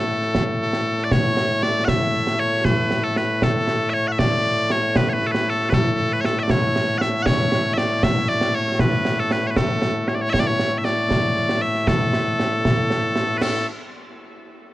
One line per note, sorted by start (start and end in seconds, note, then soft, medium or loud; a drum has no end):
0.00 13.66 A2 medium
0.00 13.66 A3 medium
0.00 1.04 A4 medium
0.22 snare soft
0.35 concert bass drum soft
0.35 snare medium
0.73 snare medium
0.99 snare soft
1.04 1.12 D5 medium
1.12 1.63 C#5 loud
1.12 concert bass drum medium
1.12 snare medium
1.37 snare medium
1.63 1.85 D5 loud
1.63 snare medium
1.85 2.39 E5 loud
1.85 1.88 F#5 loud
1.85 concert bass drum medium
1.85 snare loud
2.14 snare soft
2.27 snare medium
2.39 2.65 C#5 loud
2.53 snare soft
2.65 3.04 B4 loud
2.65 concert bass drum medium
2.65 snare medium
2.91 snare medium
3.04 3.17 A4 medium
3.17 3.43 B4 medium
3.17 snare medium
3.42 3.90 A4 medium
3.42 concert bass drum medium
3.42 snare medium
3.68 snare medium
3.90 4.08 C#5 medium
3.90 3.94 E5 medium
4.08 4.12 F#5 medium
4.12 4.19 E5 medium
4.19 4.72 D5 loud
4.19 concert bass drum medium
4.19 snare medium
4.70 4.97 C#5 medium
4.70 snare medium
4.96 5.09 B4 loud
4.96 concert bass drum medium
4.96 snare loud
5.09 5.26 B4 loud
5.09 5.13 C#5 medium
5.22 snare soft
5.26 5.31 A4 medium
5.31 5.49 B4 loud
5.31 snare medium
5.49 5.69 A4 medium
5.60 snare soft
5.69 5.74 B4 medium
5.69 concert bass drum medium
5.69 snare loud
5.74 6.13 A4 medium
6.13 6.21 B4 loud
6.21 6.25 C#5 medium
6.21 snare medium
6.25 6.39 A4 medium
6.39 6.51 D5 medium
6.39 6.43 E5 medium
6.50 6.98 C#5 medium
6.50 concert bass drum medium
6.50 snare loud
6.76 snare medium
6.98 7.22 E5 loud
6.98 7.01 F#5 loud
6.98 snare medium
7.22 7.74 C#5 loud
7.22 7.26 F#5 loud
7.22 concert bass drum medium
7.22 snare loud
7.52 snare medium
7.74 7.78 E5 medium
7.78 8.04 D5 medium
7.78 snare medium
8.03 8.29 E5 loud
8.03 concert bass drum medium
8.03 snare loud
8.29 8.55 D5 loud
8.29 snare soft
8.41 snare medium
8.55 8.80 C#5 loud
8.67 snare soft
8.80 9.19 B4 loud
8.80 concert bass drum medium
8.80 snare loud
9.05 snare medium
9.19 9.32 A4 medium
9.31 9.47 B4 medium
9.31 snare medium
9.47 9.56 B4 medium
9.47 9.51 C#5 medium
9.56 10.08 A4 medium
9.56 concert bass drum medium
9.56 snare loud
9.82 snare medium
10.08 10.15 C#5 medium
10.08 snare medium
10.15 10.21 D5 medium
10.21 10.30 C#5 loud
10.30 10.39 C#5 loud
10.30 10.33 E5 loud
10.34 concert bass drum medium
10.34 snare loud
10.39 10.47 D5 medium
10.47 10.78 C#5 loud
10.59 snare medium
10.78 10.85 E5 medium
10.85 11.62 D5 medium
10.85 snare medium
11.11 concert bass drum medium
11.11 snare medium
11.36 snare soft
11.49 snare medium
11.62 11.88 E5 medium
11.75 snare soft
11.87 13.37 A4 medium
11.87 concert bass drum medium
11.87 snare loud
12.13 snare medium
12.39 snare medium
12.65 concert bass drum medium
12.65 snare medium
12.90 snare medium
13.16 snare medium
13.37 13.42 B4 medium
13.42 13.66 A4 medium
13.42 snare loud
13.42 crash medium